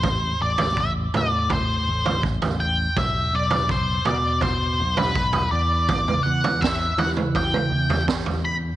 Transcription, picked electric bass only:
X:1
M:4/4
L:1/16
Q:1/4=82
K:Em
V:1 name="Picked electric bass" clef=bass
A,,,2 A,,,4 A,,4 A,,, A,,,4- A,,, | B,,,2 B,,,4 B,,4 B,,, B,,,3 E,,2- | E,,2 E,,4 E,4 E,, E,,4- E,, |]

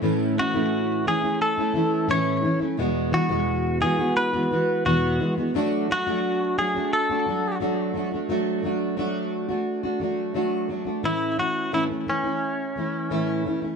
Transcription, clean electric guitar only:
X:1
M:4/4
L:1/16
Q:1/4=87
K:A
V:1 name="Clean electric guitar"
z2 F4 G2 A4 c3 z | z2 F4 G2 B4 F3 z | z2 F4 G2 A4 z4 | z16 |
E2 F2 E2 C8 z2 |]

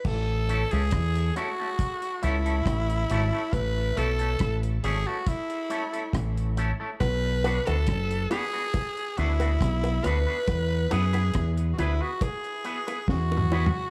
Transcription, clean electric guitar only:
X:1
M:4/4
L:1/16
Q:1/4=69
K:A
V:1 name="Clean electric guitar"
z2 [A,CEA] [A,CEA] z2 [A,CEA] [A,CEA] z2 [A,CEA] [A,CEA] z2 [A,CEA] [A,CEA] | z2 [A,CEA] [A,CEA] z2 [A,CEA] [A,CEA] z2 [A,CEA] [A,CEA] z2 [A,CEA] [A,CEA] | z2 [B,DFB] [B,DFB] z2 [B,DFB] [B,DFB] z2 [B,DFB] [B,DFB] z2 [B,DFB] [B,DFB] | z2 [B,EGB] [B,EGB] z2 [B,EGB] [B,EGB] z2 [B,EGB] [B,EGB] z2 [B,EGB] z |]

